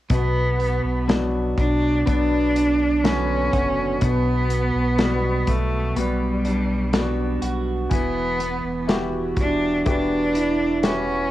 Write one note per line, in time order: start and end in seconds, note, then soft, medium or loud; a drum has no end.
0.10 0.80 B1 medium
0.10 4.00 B2 medium
0.10 3.99 B2 medium
0.10 1.05 B3 loud
0.10 kick loud
0.10 closed hi-hat medium
0.59 2.06 B3 medium
0.59 closed hi-hat medium
0.84 1.54 B1 medium
1.08 2.04 F#3 soft
1.08 2.04 B3 soft
1.08 2.04 D4 medium
1.08 3.05 F#4 medium
1.08 snare loud
1.08 closed hi-hat medium
1.58 2.04 B1 loud
1.58 2.04 D4 loud
1.58 kick medium
1.58 closed hi-hat medium
2.06 3.50 B1 loud
2.06 3.02 F#3 soft
2.06 3.04 B3 medium
2.06 3.02 B3 soft
2.06 3.02 D4 soft
2.06 3.06 D4 loud
2.06 kick medium
2.06 closed hi-hat medium
2.56 6.06 D4 medium
2.56 closed hi-hat medium
3.04 3.99 D3 medium
3.04 3.99 F#3 soft
3.04 3.99 B3 soft
3.04 4.50 B3 medium
3.04 4.04 C#4 medium
3.04 3.53 F#4 medium
3.04 snare loud
3.04 closed hi-hat medium
3.53 3.99 F#1 medium
3.53 4.99 F#4 medium
3.53 kick medium
3.53 closed hi-hat medium
4.01 4.71 B1 loud
4.01 7.87 B2 medium
4.01 7.91 B2 medium
4.01 5.50 B3 medium
4.01 kick medium
4.01 closed hi-hat medium
4.50 5.96 B3 medium
4.50 closed hi-hat medium
4.75 5.44 B1 loud
4.98 5.93 G3 soft
4.98 5.94 B3 soft
4.98 5.94 F#4 medium
4.98 6.95 F#4 medium
4.98 snare loud
4.98 closed hi-hat medium
5.47 5.93 B1 loud
5.47 5.98 A3 medium
5.47 kick medium
5.47 closed hi-hat medium
5.96 7.38 B1 loud
5.96 6.91 G3 soft
5.96 7.43 G3 medium
5.96 6.91 B3 soft
5.96 6.93 B3 medium
5.96 6.91 F#4 soft
5.96 closed hi-hat medium
6.45 6.93 D4 medium
6.45 closed hi-hat medium
6.93 7.88 G3 soft
6.93 7.88 B3 soft
6.93 8.40 B3 medium
6.93 8.02 D4 medium
6.93 7.88 F#4 medium
6.93 7.41 F#4 medium
6.93 snare loud
6.93 closed hi-hat medium
7.42 7.88 B1 medium
7.42 8.88 F#4 medium
7.42 closed hi-hat medium
7.89 8.61 E1 loud
7.89 11.31 E3 medium
7.89 8.85 B3 loud
7.89 kick loud
7.89 closed hi-hat medium
8.40 9.85 B3 medium
8.40 closed hi-hat medium
8.64 9.33 E1 loud
8.88 9.83 E4 soft
8.88 9.83 F#4 soft
8.88 10.85 F#4 medium
8.88 9.84 G4 medium
8.88 snare loud
8.88 closed hi-hat medium
9.37 9.83 E1 medium
9.37 9.84 D4 loud
9.37 kick medium
9.37 closed hi-hat medium
9.85 11.29 E1 loud
9.85 10.84 B3 medium
9.85 10.81 D4 loud
9.85 10.81 E4 soft
9.85 10.81 F#4 soft
9.85 10.81 G4 soft
9.85 kick medium
9.85 closed hi-hat medium
10.35 10.83 E4 medium
10.35 closed hi-hat medium
10.83 11.31 B3 medium
10.83 11.31 C#4 loud
10.83 11.31 E4 soft
10.83 11.31 E4 medium
10.83 11.31 F#4 soft
10.83 11.31 F#4 medium
10.83 11.31 G4 soft
10.83 snare loud
10.83 closed hi-hat medium